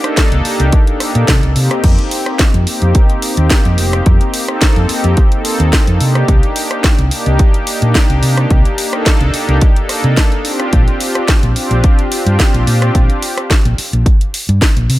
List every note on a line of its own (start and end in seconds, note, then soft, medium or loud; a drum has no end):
0.04 0.42 A#3 loud
0.04 0.42 D4 medium
0.04 0.42 D#4 medium
0.04 0.42 A4 loud
0.04 cross-stick medium
0.04 closed hi-hat soft
0.17 kick loud
0.17 snare loud
0.17 closed hi-hat medium
0.32 0.42 C2 loud
0.32 closed hi-hat soft
0.45 0.65 A#3 loud
0.45 0.65 D4 medium
0.45 0.65 D#4 medium
0.45 0.66 G4 loud
0.45 muted fingered electric bass stroke soft
0.45 open hi-hat medium
0.60 0.70 C2 loud
0.60 closed hi-hat soft
0.72 kick loud
0.72 closed hi-hat medium
0.87 0.98 A#3 medium
0.87 0.98 D4 medium
0.87 0.98 D#4 medium
0.87 0.99 A4 loud
0.87 closed hi-hat soft
1.00 1.13 A#3 medium
1.00 1.13 D4 medium
1.00 1.13 D#4 medium
1.00 1.14 G4 loud
1.00 cross-stick medium
1.00 open hi-hat loud
1.15 1.26 A#2 loud
1.15 1.35 A#3 medium
1.15 1.35 D4 medium
1.15 1.35 D#4 medium
1.15 1.35 A4 medium
1.15 closed hi-hat soft
1.28 1.40 C3 medium
1.28 kick loud
1.28 snare loud
1.28 closed hi-hat medium
1.43 1.53 C2 loud
1.43 closed hi-hat soft
1.55 1.68 C3 loud
1.55 2.23 A#3 medium
1.55 2.23 C4 medium
1.55 2.23 D#4 medium
1.55 2.24 G4 medium
1.55 open hi-hat medium
1.71 cross-stick medium
1.71 closed hi-hat soft
1.84 1.95 F2 loud
1.84 kick loud
1.84 closed hi-hat medium
1.84 crash medium
1.99 closed hi-hat soft
2.11 open hi-hat loud
2.26 2.38 A#3 medium
2.26 2.38 C4 medium
2.26 2.38 D#4 medium
2.26 2.38 G4 medium
2.26 cross-stick medium
2.26 closed hi-hat soft
2.39 kick loud
2.39 snare loud
2.39 closed hi-hat medium
2.54 2.64 F2 loud
2.54 closed hi-hat soft
2.67 3.34 A#3 medium
2.67 3.34 C4 medium
2.67 3.35 D#4 medium
2.67 3.35 G4 medium
2.67 open hi-hat medium
2.82 2.92 F2 medium
2.82 closed hi-hat soft
2.95 kick loud
2.95 closed hi-hat medium
3.10 closed hi-hat soft
3.22 open hi-hat loud
3.37 3.48 D#2 medium
3.37 4.45 A#3 medium
3.37 4.45 C4 medium
3.37 4.46 D#4 medium
3.37 4.46 G4 medium
3.37 closed hi-hat soft
3.50 kick loud
3.50 snare loud
3.50 closed hi-hat medium
3.65 3.76 F2 loud
3.65 closed hi-hat soft
3.78 4.00 F1 medium
3.78 open hi-hat loud
3.93 cross-stick medium
3.93 closed hi-hat soft
4.06 4.18 F2 loud
4.06 kick loud
4.06 closed hi-hat medium
4.21 closed hi-hat soft
4.34 open hi-hat loud
4.48 4.86 A#3 loud
4.48 4.87 C4 medium
4.48 4.87 D#4 medium
4.48 4.87 A4 loud
4.48 cross-stick medium
4.61 kick loud
4.61 snare loud
4.61 closed hi-hat medium
4.76 4.87 F2 loud
4.76 closed hi-hat soft
4.89 5.10 A#3 medium
4.89 5.10 C4 medium
4.89 5.10 D#4 medium
4.89 5.10 G4 loud
4.89 muted fingered electric bass stroke soft
4.89 open hi-hat loud
5.04 5.14 F2 medium
5.04 closed hi-hat soft
5.17 kick loud
5.17 closed hi-hat medium
5.31 5.97 A#3 medium
5.31 5.98 C4 medium
5.31 5.98 D#4 medium
5.31 5.98 A4 loud
5.31 closed hi-hat soft
5.45 open hi-hat loud
5.60 5.70 D#2 loud
5.60 closed hi-hat soft
5.73 kick loud
5.73 snare loud
5.73 closed hi-hat medium
5.87 5.98 F2 loud
5.87 closed hi-hat soft
6.00 6.23 C3 medium
6.00 6.67 A#3 medium
6.00 6.68 D4 medium
6.00 6.68 D#4 medium
6.00 6.68 G4 medium
6.00 open hi-hat loud
6.15 cross-stick medium
6.15 closed hi-hat soft
6.28 6.40 C2 loud
6.28 kick loud
6.28 closed hi-hat medium
6.43 closed hi-hat soft
6.56 open hi-hat loud
6.71 6.82 A#3 medium
6.71 6.83 D4 medium
6.71 6.83 D#4 medium
6.71 6.83 G4 medium
6.71 cross-stick medium
6.71 closed hi-hat soft
6.84 kick loud
6.84 snare loud
6.84 closed hi-hat medium
6.99 7.09 C2 loud
6.99 closed hi-hat soft
7.10 7.78 A#3 medium
7.10 7.78 D4 medium
7.10 7.79 D#4 medium
7.10 7.79 G4 medium
7.10 open hi-hat loud
7.26 7.37 C2 loud
7.26 closed hi-hat soft
7.39 kick loud
7.39 closed hi-hat medium
7.54 closed hi-hat soft
7.67 open hi-hat loud
7.82 7.92 A#2 loud
7.82 8.90 A#3 medium
7.82 8.90 D4 medium
7.82 8.90 D#4 medium
7.82 8.90 G4 medium
7.82 closed hi-hat soft
7.95 kick loud
7.95 snare loud
7.95 closed hi-hat medium
8.10 8.20 C2 loud
8.10 closed hi-hat soft
8.23 8.45 C3 medium
8.23 open hi-hat loud
8.37 cross-stick medium
8.37 closed hi-hat soft
8.50 8.62 C2 loud
8.50 kick loud
8.50 closed hi-hat medium
8.65 closed hi-hat soft
8.78 open hi-hat loud
8.93 9.31 A#3 loud
8.93 9.31 D4 medium
8.93 9.31 D#4 medium
8.93 9.31 A4 loud
8.93 cross-stick medium
8.93 closed hi-hat soft
9.06 kick loud
9.06 snare loud
9.06 closed hi-hat medium
9.21 9.31 C2 loud
9.21 closed hi-hat soft
9.34 9.54 A#3 medium
9.34 9.54 D4 medium
9.34 9.55 D#4 medium
9.34 9.55 G4 loud
9.34 muted fingered electric bass stroke soft
9.34 open hi-hat loud
9.49 9.59 C2 loud
9.49 closed hi-hat soft
9.61 kick loud
9.61 closed hi-hat medium
9.76 10.42 A#3 medium
9.76 10.42 D4 medium
9.76 10.42 D#4 medium
9.76 10.43 A4 medium
9.76 closed hi-hat soft
9.89 cross-stick medium
9.89 open hi-hat loud
10.04 10.14 C3 medium
10.04 closed hi-hat soft
10.17 kick loud
10.17 snare loud
10.17 closed hi-hat medium
10.32 closed hi-hat soft
10.44 11.12 C4 medium
10.44 11.12 D4 medium
10.44 11.12 F4 medium
10.44 11.13 G4 medium
10.44 open hi-hat loud
10.60 cross-stick medium
10.60 closed hi-hat soft
10.73 10.84 A#1 loud
10.73 kick loud
10.73 closed hi-hat medium
10.88 closed hi-hat soft
11.00 open hi-hat loud
11.15 11.27 C4 medium
11.15 11.27 D4 medium
11.15 11.27 F4 medium
11.15 11.27 G4 medium
11.15 cross-stick medium
11.15 closed hi-hat soft
11.28 kick loud
11.28 snare loud
11.28 closed hi-hat medium
11.43 11.53 A#1 loud
11.43 closed hi-hat soft
11.55 12.23 C4 medium
11.55 12.23 D4 medium
11.55 12.23 F4 medium
11.55 12.24 G4 medium
11.55 open hi-hat medium
11.71 11.81 A#1 medium
11.71 closed hi-hat soft
11.84 kick loud
11.84 closed hi-hat medium
11.99 closed hi-hat soft
12.12 open hi-hat loud
12.26 12.37 G2 medium
12.26 13.22 C4 medium
12.26 13.23 D4 medium
12.26 13.23 F4 medium
12.26 13.23 G4 medium
12.26 closed hi-hat soft
12.40 kick loud
12.40 snare loud
12.40 closed hi-hat medium
12.54 12.64 A#1 loud
12.54 closed hi-hat soft
12.67 12.89 A#2 medium
12.67 open hi-hat medium
12.82 cross-stick medium
12.82 closed hi-hat soft
12.95 13.07 A#1 loud
12.95 kick loud
12.95 closed hi-hat medium
13.10 closed hi-hat soft
13.22 open hi-hat loud
13.38 cross-stick medium
13.38 closed hi-hat soft
13.50 kick loud
13.50 snare loud
13.50 closed hi-hat medium
13.65 13.76 A#1 loud
13.65 closed hi-hat soft
13.78 muted fingered electric bass stroke soft
13.78 open hi-hat medium
13.93 14.03 A#1 loud
13.93 closed hi-hat soft
14.06 kick loud
14.06 closed hi-hat medium
14.21 closed hi-hat soft
14.34 open hi-hat loud
14.49 14.59 G2 loud
14.49 closed hi-hat soft
14.62 kick loud
14.62 snare loud
14.62 closed hi-hat medium
14.77 14.87 A#1 loud
14.77 closed hi-hat soft
14.90 14.99 C3 loud
14.90 open hi-hat medium